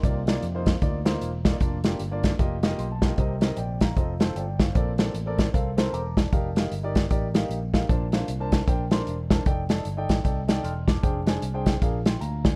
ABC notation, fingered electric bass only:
X:1
M:4/4
L:1/8
Q:"Swing" 1/4=153
K:Bb
V:1 name="Fingered electric bass" clef=bass
C,,2 F,,2 D,,2 =E,,,2 | F,,,2 G,,,2 F,,,2 _C,,2 | C,,2 B,,,2 F,,,2 G,,,2 | B,,,2 A,,,2 C,,2 =E,,,2 |
F,,,2 G,,,2 A,,,2 B,,,2 | B,,,2 C,,2 B,,,2 =E,,,2 | F,,,2 G,,, A,,, C,,2 =E,,,2 | F,,,2 C,,2 B,,,2 D,,2 |]